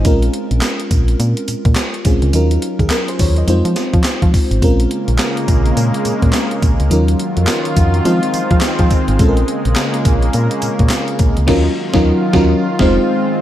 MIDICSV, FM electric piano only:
0, 0, Header, 1, 2, 480
1, 0, Start_track
1, 0, Key_signature, -5, "minor"
1, 0, Tempo, 571429
1, 44, Time_signature, 4, 2, 24, 8
1, 11267, End_track
2, 0, Start_track
2, 0, Title_t, "FM electric piano"
2, 0, Program_c, 0, 5
2, 0, Control_c, 0, 64, 127
2, 39, Note_on_c, 0, 56, 76
2, 42, Note_on_c, 0, 60, 65
2, 48, Note_on_c, 0, 61, 72
2, 53, Note_on_c, 0, 65, 70
2, 56, Control_c, 0, 64, 0
2, 56, Note_on_c, 0, 70, 88
2, 212, Control_c, 0, 64, 127
2, 1688, Note_off_c, 0, 56, 0
2, 1689, Note_off_c, 0, 60, 0
2, 1693, Note_off_c, 0, 61, 0
2, 1695, Note_off_c, 0, 65, 0
2, 1696, Note_off_c, 0, 70, 0
2, 1724, Note_on_c, 0, 56, 62
2, 1728, Note_on_c, 0, 60, 57
2, 1731, Note_on_c, 0, 61, 54
2, 1733, Note_on_c, 0, 65, 52
2, 1736, Note_on_c, 0, 68, 68
2, 1951, Note_off_c, 0, 61, 0
2, 1958, Note_on_c, 0, 54, 80
2, 1961, Note_on_c, 0, 61, 68
2, 1962, Note_off_c, 0, 65, 0
2, 1964, Note_off_c, 0, 56, 0
2, 1966, Note_off_c, 0, 60, 0
2, 1969, Note_on_c, 0, 63, 69
2, 1970, Note_off_c, 0, 68, 0
2, 1972, Note_on_c, 0, 65, 66
2, 1975, Control_c, 0, 64, 0
2, 1978, Note_on_c, 0, 70, 83
2, 2109, Control_c, 0, 64, 127
2, 2206, Note_off_c, 0, 70, 0
2, 2352, Note_on_c, 0, 68, 69
2, 2441, Note_off_c, 0, 68, 0
2, 2447, Note_on_c, 0, 70, 75
2, 2584, Note_off_c, 0, 70, 0
2, 2593, Note_on_c, 0, 72, 78
2, 2681, Note_off_c, 0, 72, 0
2, 2689, Note_on_c, 0, 73, 75
2, 2825, Note_off_c, 0, 73, 0
2, 2838, Note_on_c, 0, 75, 70
2, 2902, Note_off_c, 0, 54, 0
2, 2903, Note_off_c, 0, 61, 0
2, 2907, Note_off_c, 0, 63, 0
2, 2909, Note_off_c, 0, 65, 0
2, 2919, Note_on_c, 0, 56, 78
2, 2925, Note_on_c, 0, 60, 76
2, 2930, Note_on_c, 0, 63, 71
2, 2934, Note_on_c, 0, 65, 75
2, 2937, Control_c, 0, 64, 0
2, 2939, Note_on_c, 0, 72, 86
2, 3062, Note_off_c, 0, 75, 0
2, 3079, Control_c, 0, 64, 127
2, 3862, Note_off_c, 0, 56, 0
2, 3865, Note_off_c, 0, 60, 0
2, 3868, Note_off_c, 0, 63, 0
2, 3870, Note_off_c, 0, 65, 0
2, 3872, Note_off_c, 0, 72, 0
2, 3880, Note_on_c, 0, 56, 78
2, 3887, Note_on_c, 0, 60, 71
2, 3889, Note_on_c, 0, 61, 66
2, 3894, Control_c, 0, 64, 0
2, 3896, Note_on_c, 0, 65, 69
2, 3900, Note_on_c, 0, 70, 86
2, 4022, Control_c, 0, 64, 127
2, 5768, Note_off_c, 0, 56, 0
2, 5772, Note_off_c, 0, 60, 0
2, 5773, Note_off_c, 0, 61, 0
2, 5776, Note_off_c, 0, 65, 0
2, 5778, Note_off_c, 0, 70, 0
2, 5797, Note_on_c, 0, 54, 75
2, 5801, Note_on_c, 0, 61, 75
2, 5805, Note_on_c, 0, 63, 70
2, 5811, Note_on_c, 0, 65, 69
2, 5815, Control_c, 0, 64, 0
2, 5817, Note_on_c, 0, 70, 85
2, 5977, Control_c, 0, 64, 127
2, 6741, Note_off_c, 0, 54, 0
2, 6743, Note_off_c, 0, 61, 0
2, 6745, Note_off_c, 0, 63, 0
2, 6748, Note_off_c, 0, 65, 0
2, 6751, Note_off_c, 0, 70, 0
2, 6758, Note_on_c, 0, 56, 81
2, 6763, Note_on_c, 0, 60, 75
2, 6767, Note_on_c, 0, 63, 74
2, 6772, Note_on_c, 0, 65, 70
2, 6773, Control_c, 0, 64, 0
2, 6776, Note_on_c, 0, 72, 90
2, 6897, Control_c, 0, 64, 127
2, 7701, Note_off_c, 0, 56, 0
2, 7704, Note_off_c, 0, 60, 0
2, 7706, Note_off_c, 0, 63, 0
2, 7709, Note_off_c, 0, 65, 0
2, 7711, Note_off_c, 0, 72, 0
2, 7721, Note_on_c, 0, 56, 78
2, 7727, Note_on_c, 0, 60, 65
2, 7731, Note_on_c, 0, 61, 71
2, 7734, Control_c, 0, 64, 0
2, 7737, Note_on_c, 0, 65, 65
2, 7743, Note_on_c, 0, 69, 68
2, 7797, Note_on_c, 0, 70, 81
2, 7799, Note_off_c, 0, 69, 0
2, 7871, Control_c, 0, 64, 127
2, 9609, Note_off_c, 0, 56, 0
2, 9612, Note_off_c, 0, 60, 0
2, 9614, Note_off_c, 0, 61, 0
2, 9617, Note_off_c, 0, 65, 0
2, 9634, Note_on_c, 0, 54, 106
2, 9638, Note_on_c, 0, 61, 100
2, 9643, Note_on_c, 0, 63, 100
2, 9644, Note_off_c, 0, 70, 0
2, 9650, Note_on_c, 0, 65, 99
2, 9655, Note_on_c, 0, 70, 101
2, 9656, Control_c, 0, 64, 0
2, 9810, Note_off_c, 0, 54, 0
2, 9813, Note_off_c, 0, 61, 0
2, 9815, Note_off_c, 0, 63, 0
2, 9819, Note_off_c, 0, 65, 0
2, 9822, Note_off_c, 0, 70, 0
2, 9826, Control_c, 0, 64, 127
2, 10022, Note_on_c, 0, 54, 103
2, 10027, Note_on_c, 0, 61, 102
2, 10033, Note_on_c, 0, 63, 100
2, 10039, Note_on_c, 0, 65, 103
2, 10044, Note_on_c, 0, 70, 95
2, 10180, Note_off_c, 0, 54, 0
2, 10183, Note_off_c, 0, 61, 0
2, 10186, Note_off_c, 0, 63, 0
2, 10189, Note_off_c, 0, 65, 0
2, 10192, Note_off_c, 0, 70, 0
2, 10361, Note_on_c, 0, 54, 107
2, 10365, Note_on_c, 0, 61, 97
2, 10369, Note_on_c, 0, 63, 107
2, 10375, Note_on_c, 0, 65, 109
2, 10382, Note_on_c, 0, 70, 110
2, 10534, Note_off_c, 0, 54, 0
2, 10536, Note_off_c, 0, 61, 0
2, 10539, Note_off_c, 0, 63, 0
2, 10542, Note_off_c, 0, 65, 0
2, 10546, Note_off_c, 0, 70, 0
2, 10612, Control_c, 0, 64, 0
2, 10748, Note_on_c, 0, 56, 106
2, 10752, Note_on_c, 0, 60, 102
2, 10759, Control_c, 0, 64, 127
2, 10759, Note_on_c, 0, 63, 104
2, 10762, Note_on_c, 0, 65, 101
2, 10770, Note_on_c, 0, 72, 104
2, 10903, Note_off_c, 0, 56, 0
2, 10906, Note_off_c, 0, 60, 0
2, 10909, Note_off_c, 0, 63, 0
2, 10911, Note_off_c, 0, 65, 0
2, 10916, Note_off_c, 0, 72, 0
2, 11267, End_track
0, 0, End_of_file